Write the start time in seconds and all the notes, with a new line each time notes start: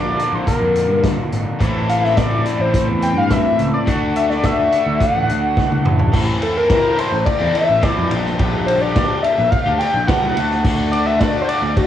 Already playing: A#1 A#2 D3 A#3 D4 F4 D5
0.17 A#2 D3 A#3 D4 F4, closed hi-hat
0.33 A#1 C5
0.47 A#4, kick, closed hi-hat
0.61 F2
0.75 closed hi-hat
0.89 G2
1.04 kick, snare, closed hi-hat
1.32 G#1, closed hi-hat
1.59 A1 A2 E3 A3 C4 E4, kick, closed hi-hat
1.89 F5, closed hi-hat
2.04 E5, snare
2.17 D5, kick, snare, closed hi-hat
2.45 A2 E3 A3 C4 E4, closed hi-hat
2.59 A1 C5
2.74 kick, closed hi-hat
2.88 E2
3.02 G5, closed hi-hat
3.16 G2 F5
3.30 E5, kick, snare, closed hi-hat
3.59 C#2, closed hi-hat
3.74 D5
3.86 D2 D3 A3 D4 F#4, kick, closed hi-hat
4.16 E5, closed hi-hat
4.30 D5, snare
4.44 E5, kick, snare, closed hi-hat
4.72 D3 A3 D4 F#4, closed hi-hat
4.86 D2
5.01 F#5, kick, closed hi-hat
5.14 A1
5.29 D2, closed hi-hat
5.57 C2, kick, snare
5.72 high tom
5.84 A1, mid tom
5.99 floor tom
6.12 A1 A2 E3 A3 C4 E4, kick, crash
6.42 A4, ride
6.55 A3 C4 E4 A#4
6.69 A2 E3 A3 C4 E4, kick, snare, ride
6.97 E3 A3 C4 E4 C5, ride
7.12 A1, muted overdriven electric guitar stroke
7.26 D5, kick, ride
7.39 E2 A3 C4 E4
7.54 E3 A3 C4 E4 E5, ride
7.68 A1, muted overdriven electric guitar stroke
7.82 A2 E3 A3 C4 E4 D5, kick, snare, ride
7.96 F2 A3 C4 E4
8.09 A#1 A#2 D3 G3 D4 G4, ride
8.26 snare
8.37 A#2 D3 G3 D4 G4, kick, ride
8.66 C5, ride
8.81 G3 D4 G4 D5
8.95 A#2 D3 G3 D4 G4, kick, snare, ride
9.22 D3 G3 D4 G4 E5, ride
9.38 A#1, muted overdriven electric guitar stroke
9.50 F5, kick, ride
9.66 D2 G3 D4 G4
9.79 D3 G3 D4 G4 G5, ride
9.94 A#1, muted overdriven electric guitar stroke
10.07 A#2 D3 G3 D4 G4 F#5, kick, snare, ride
10.22 C2 G3 D4 G4
10.36 D2 D3 A3 D4 F#4, ride
10.51 snare
10.63 D3 A3 D4 F#4, kick, crash
10.92 D5, ride
11.05 A3 D4 F#4 E5
11.20 D3 A3 D4 F#4 D5, kick, snare, ride
11.42 C5
11.48 D3 A3 D4 F#4 D5, ride
11.62 D2, muted overdriven electric guitar stroke
11.77 F#4, kick, ride